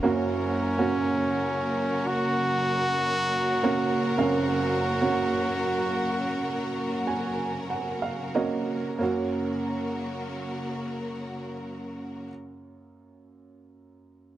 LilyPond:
<<
  \new Staff \with { instrumentName = "Trumpet" } { \time 4/4 \key fis \major \tempo 4 = 50 cis'2 fis'2 | fis'2. r4 | r1 | }
  \new Staff \with { instrumentName = "Upright piano" } { \time 4/4 \key fis \major << { r1 | r2 r8 gis''8 fis''16 eis''16 dis''8 | r1 | } \\ { <ais cis' fis'>8. <ais cis' fis'>2 r8. <ais cis' fis'>8 | <ais cis' eis''>8. <ais cis' fis'>2 r8. <ais cis' fis'>8 | <ais cis' fis'>1 | } >> }
  \new Staff \with { instrumentName = "Upright piano" } { \clef bass \time 4/4 \key fis \major <fis,, fis,>1 | <fis,, fis,>1 | fis,1 | }
  \new Staff \with { instrumentName = "String section" } { \time 4/4 \key fis \major <cis fis ais fis' ais'>1~ | <cis fis ais fis' ais'>1 | <cis fis ais fis' ais'>1 | }
>>